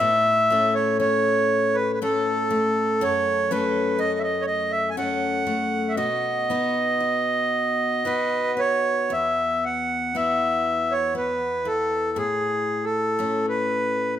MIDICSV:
0, 0, Header, 1, 3, 480
1, 0, Start_track
1, 0, Tempo, 1008403
1, 1422, Tempo, 990099
1, 1423, Time_signature, 3, 2, 24, 8
1, 2862, Tempo, 1045296
1, 4782, Tempo, 1005025
1, 6718, End_track
2, 0, Start_track
2, 0, Title_t, "Accordion"
2, 0, Program_c, 0, 21
2, 0, Note_on_c, 0, 76, 94
2, 354, Note_off_c, 0, 76, 0
2, 355, Note_on_c, 0, 73, 71
2, 464, Note_off_c, 0, 73, 0
2, 471, Note_on_c, 0, 73, 81
2, 831, Note_on_c, 0, 71, 85
2, 839, Note_off_c, 0, 73, 0
2, 913, Note_off_c, 0, 71, 0
2, 920, Note_on_c, 0, 71, 61
2, 949, Note_off_c, 0, 71, 0
2, 964, Note_on_c, 0, 69, 77
2, 1441, Note_on_c, 0, 73, 80
2, 1447, Note_off_c, 0, 69, 0
2, 1673, Note_on_c, 0, 71, 71
2, 1678, Note_off_c, 0, 73, 0
2, 1910, Note_on_c, 0, 75, 84
2, 1912, Note_off_c, 0, 71, 0
2, 2004, Note_on_c, 0, 76, 57
2, 2007, Note_off_c, 0, 75, 0
2, 2020, Note_off_c, 0, 76, 0
2, 2026, Note_on_c, 0, 75, 79
2, 2113, Note_on_c, 0, 73, 56
2, 2124, Note_off_c, 0, 75, 0
2, 2134, Note_off_c, 0, 73, 0
2, 2140, Note_on_c, 0, 75, 84
2, 2260, Note_on_c, 0, 76, 89
2, 2261, Note_off_c, 0, 75, 0
2, 2348, Note_off_c, 0, 76, 0
2, 2348, Note_on_c, 0, 80, 66
2, 2378, Note_off_c, 0, 80, 0
2, 2385, Note_on_c, 0, 78, 83
2, 2826, Note_on_c, 0, 76, 54
2, 2847, Note_off_c, 0, 78, 0
2, 2861, Note_off_c, 0, 76, 0
2, 2865, Note_on_c, 0, 75, 81
2, 3825, Note_on_c, 0, 71, 75
2, 4052, Note_off_c, 0, 75, 0
2, 4072, Note_on_c, 0, 73, 82
2, 4078, Note_off_c, 0, 71, 0
2, 4316, Note_on_c, 0, 76, 79
2, 4318, Note_off_c, 0, 73, 0
2, 4556, Note_off_c, 0, 76, 0
2, 4558, Note_on_c, 0, 78, 73
2, 4792, Note_on_c, 0, 76, 81
2, 4795, Note_off_c, 0, 78, 0
2, 5152, Note_on_c, 0, 73, 80
2, 5161, Note_off_c, 0, 76, 0
2, 5261, Note_off_c, 0, 73, 0
2, 5274, Note_on_c, 0, 71, 77
2, 5512, Note_on_c, 0, 69, 73
2, 5516, Note_off_c, 0, 71, 0
2, 5754, Note_off_c, 0, 69, 0
2, 5755, Note_on_c, 0, 68, 76
2, 6074, Note_on_c, 0, 69, 69
2, 6078, Note_off_c, 0, 68, 0
2, 6369, Note_off_c, 0, 69, 0
2, 6381, Note_on_c, 0, 71, 78
2, 6697, Note_off_c, 0, 71, 0
2, 6718, End_track
3, 0, Start_track
3, 0, Title_t, "Steel-string acoustic guitar"
3, 0, Program_c, 1, 25
3, 0, Note_on_c, 1, 45, 66
3, 4, Note_on_c, 1, 69, 49
3, 239, Note_on_c, 1, 57, 51
3, 245, Note_off_c, 1, 69, 0
3, 246, Note_on_c, 1, 61, 46
3, 247, Note_on_c, 1, 69, 51
3, 472, Note_off_c, 1, 61, 0
3, 474, Note_on_c, 1, 61, 54
3, 958, Note_off_c, 1, 61, 0
3, 960, Note_off_c, 1, 57, 0
3, 960, Note_on_c, 1, 61, 50
3, 962, Note_off_c, 1, 69, 0
3, 962, Note_on_c, 1, 57, 54
3, 964, Note_on_c, 1, 69, 56
3, 1190, Note_off_c, 1, 57, 0
3, 1192, Note_on_c, 1, 57, 51
3, 1432, Note_off_c, 1, 45, 0
3, 1434, Note_on_c, 1, 42, 67
3, 1437, Note_off_c, 1, 69, 0
3, 1439, Note_on_c, 1, 69, 58
3, 1670, Note_off_c, 1, 69, 0
3, 1673, Note_off_c, 1, 57, 0
3, 1675, Note_on_c, 1, 57, 57
3, 1676, Note_off_c, 1, 61, 0
3, 1678, Note_on_c, 1, 61, 55
3, 1680, Note_on_c, 1, 69, 62
3, 1900, Note_off_c, 1, 61, 0
3, 1906, Note_on_c, 1, 61, 55
3, 2378, Note_off_c, 1, 57, 0
3, 2379, Note_off_c, 1, 61, 0
3, 2381, Note_off_c, 1, 69, 0
3, 2384, Note_on_c, 1, 57, 49
3, 2385, Note_on_c, 1, 61, 48
3, 2390, Note_on_c, 1, 69, 45
3, 2618, Note_off_c, 1, 57, 0
3, 2624, Note_on_c, 1, 57, 50
3, 2867, Note_off_c, 1, 42, 0
3, 2867, Note_off_c, 1, 69, 0
3, 2869, Note_on_c, 1, 66, 52
3, 2871, Note_on_c, 1, 47, 60
3, 2912, Note_off_c, 1, 57, 0
3, 2913, Note_off_c, 1, 61, 0
3, 3110, Note_on_c, 1, 59, 52
3, 3114, Note_off_c, 1, 66, 0
3, 3114, Note_on_c, 1, 63, 47
3, 3116, Note_on_c, 1, 66, 53
3, 3337, Note_off_c, 1, 63, 0
3, 3343, Note_on_c, 1, 63, 47
3, 3819, Note_off_c, 1, 63, 0
3, 3821, Note_off_c, 1, 59, 0
3, 3823, Note_on_c, 1, 59, 53
3, 3827, Note_on_c, 1, 63, 42
3, 3831, Note_off_c, 1, 66, 0
3, 3833, Note_on_c, 1, 66, 56
3, 4059, Note_off_c, 1, 59, 0
3, 4061, Note_on_c, 1, 59, 42
3, 4305, Note_on_c, 1, 40, 55
3, 4314, Note_off_c, 1, 47, 0
3, 4358, Note_off_c, 1, 63, 0
3, 4784, Note_off_c, 1, 59, 0
3, 4786, Note_on_c, 1, 59, 45
3, 4788, Note_on_c, 1, 64, 43
3, 4790, Note_off_c, 1, 66, 0
3, 4792, Note_on_c, 1, 66, 51
3, 5258, Note_off_c, 1, 59, 0
3, 5264, Note_on_c, 1, 59, 44
3, 5503, Note_off_c, 1, 64, 0
3, 5505, Note_on_c, 1, 64, 45
3, 5741, Note_off_c, 1, 40, 0
3, 5748, Note_on_c, 1, 45, 60
3, 5790, Note_off_c, 1, 59, 0
3, 5796, Note_off_c, 1, 66, 0
3, 6238, Note_on_c, 1, 57, 50
3, 6241, Note_off_c, 1, 64, 0
3, 6243, Note_on_c, 1, 61, 53
3, 6708, Note_off_c, 1, 57, 0
3, 6718, Note_off_c, 1, 45, 0
3, 6718, Note_off_c, 1, 61, 0
3, 6718, End_track
0, 0, End_of_file